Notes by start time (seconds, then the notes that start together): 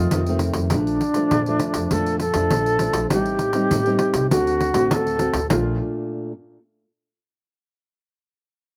Already playing: F4 D#5
0.11 F2 C3 D#3 A3 C4, pandeiro
0.26 D#3 A3 C4, pandeiro
0.39 pandeiro
0.54 F2, pandeiro
0.70 A#1 A#2 F3 A3 D4, pandeiro
0.87 pandeiro
1.01 pandeiro
1.14 F3 A3 D4, pandeiro
1.31 F2 A#2, pandeiro
1.46 F3 A3 D4, pandeiro
1.59 pandeiro
1.74 F2, pandeiro
1.91 F2 A#2 F3 A3 D4 A4, pandeiro
2.06 pandeiro
2.20 A4, pandeiro
2.34 F2 F3 A3 D4, pandeiro
2.50 A#1 F2, pandeiro
2.66 pandeiro
2.79 F3 A3 D4, pandeiro
2.93 A#1, pandeiro
3.10 A1 A2 G3 C4 D#4 G4, pandeiro
3.26 pandeiro
3.39 pandeiro
3.53 G3 C4 D#4, pandeiro
3.71 A2, pandeiro
3.86 G3 C4 D#4, pandeiro
3.99 pandeiro
4.14 C2, pandeiro
4.30 D2 D3 A3 C4 F#4, pandeiro
4.47 pandeiro
4.61 pandeiro
4.74 A1 A3 C4 F#4, pandeiro
4.91 D2 A2 A4, pandeiro
5.07 pandeiro
5.19 A3 C4 F#4, pandeiro
5.34 D2, pandeiro
5.50 A#1 A#2 A3 D4 F4, pandeiro